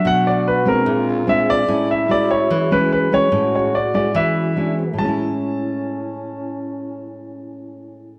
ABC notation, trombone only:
X:1
M:4/4
L:1/8
Q:1/4=146
K:A
V:1 name="Trombone"
F4 =F4 | E6- E z | F4 E2 D =C | C8- |
C8 |]